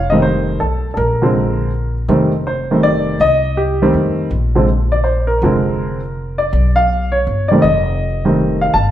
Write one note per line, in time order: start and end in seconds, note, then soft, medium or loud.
0.00 0.56 F1 medium
0.00 0.11 F5 medium
0.10 0.59 D#3 medium
0.10 0.59 G3 medium
0.10 0.59 A3 medium
0.10 0.59 C4 medium
0.10 0.15 D#5 medium
0.22 0.57 C5 medium
0.60 0.95 B1 medium
0.60 0.90 A4 medium
0.94 2.05 A#1 medium
0.94 0.98 A4 soft
0.94 1.92 A#4 medium
1.22 1.69 D3 medium
1.22 1.70 F3 medium
1.22 1.70 G#3 medium
1.22 1.70 C4 medium
2.08 3.16 F1 medium
2.08 2.31 D#3 medium
2.08 2.31 G3 medium
2.08 2.31 A3 medium
2.08 2.31 C4 medium
2.47 2.81 C5 medium
2.71 3.18 D#3 medium
2.71 3.18 G3 soft
2.71 3.18 A3 medium
2.71 3.18 C4 medium
2.83 3.21 D5 medium
3.20 3.90 C2 medium
3.20 3.59 D#5 loud
3.57 3.92 G4 medium
3.82 4.29 D#3 medium
3.82 4.29 G3 medium
3.82 4.29 A3 medium
3.82 4.29 C4 medium
3.94 4.28 F2 medium
4.31 5.38 A#1 medium
4.55 4.67 D3 medium
4.55 4.67 F3 medium
4.55 4.67 G#3 medium
4.55 4.67 C4 medium
4.92 5.04 D5 medium
5.04 5.27 C5 medium
5.27 6.35 A#4 medium
5.42 6.49 F1 medium
5.42 5.99 D3 medium
5.42 5.99 F3 medium
5.42 5.99 G#3 medium
5.42 5.99 C4 medium
6.38 6.77 D5 medium
6.53 7.23 B1 medium
6.76 7.11 F5 medium
7.12 7.51 C#5 medium
7.27 7.61 G1 medium
7.48 7.63 D#3 medium
7.48 7.63 G3 medium
7.48 7.63 A3 medium
7.48 7.63 D5 medium
7.52 7.63 C4 medium
7.62 8.71 F1 medium
7.62 8.64 D#5 medium
8.25 8.72 D#3 medium
8.25 8.72 G3 medium
8.25 8.72 A3 medium
8.25 8.73 C4 medium
8.61 8.74 F5 medium
8.74 8.91 G1 medium
8.74 8.91 A5 medium